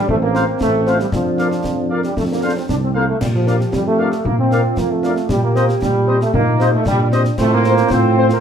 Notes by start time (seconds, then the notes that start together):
0.08 A1 A3 C4, concert bass drum
0.21 A#3
0.35 C4 F4 C5 F5, snare
0.60 A1 A3, concert bass drum, snare
0.87 C4 F4 C5 F5, snare
1.00 G3, snare
1.12 F2 F3 D4, concert bass drum, snare
1.38 D4 F4 A#4 D5 F5, snare
1.52 snare
1.64 F2, concert bass drum, snare
1.91 D4 F4 A#4 D5 F5
2.03 G3, snare
2.16 F2 A3, concert bass drum, snare
2.31 A#3
2.43 C4 D4 F4 A4 C5 F5
2.57 C4
2.69 C2 D4, concert bass drum, snare
2.82 C4
2.94 A#3 C4 F4 A4 C5 F5
3.09 A3
3.20 A#2 G3 G4, concert bass drum, snare, crash
3.34 F3
3.47 D4 F4 A#4 D5 F5, snare
3.60 snare
3.73 F2 G3, concert bass drum, snare
3.86 A3
3.98 D4 F4 A#4 D5 F5
4.12 snare
4.25 A#2 A#3 F4, concert bass drum
4.38 C4
4.51 D4 F4 A#4 D5 F5, snare
4.77 F2 A#3, concert bass drum, snare
4.91 A3
5.03 D4 F4 A#4 D5 F5, snare
5.16 snare
5.29 A#2 G3 G4, concert bass drum, snare
5.42 A#3
5.55 C4 G4 C5 D#5, snare
5.69 snare
5.81 A#2 G3, concert bass drum, snare
6.08 C4 G4 C5 D#5
6.21 A3, snare
6.34 A#2 A#3 D#4, concert bass drum
6.59 C4 G4 C5 D#5, snare
6.75 A3
6.86 A#2 G3 D4, concert bass drum, snare
7.01 G3
7.12 C4 G4 C5 D#5, snare
7.25 snare
7.38 A2 A3 C4 F4 C5, concert bass drum, snare, crash
7.52 A#3
7.64 C4 F4 C5, snare
7.77 snare
7.90 A2 C4 F4 C5, concert bass drum, snare
8.17 C4 F4 C5
8.29 A#3, snare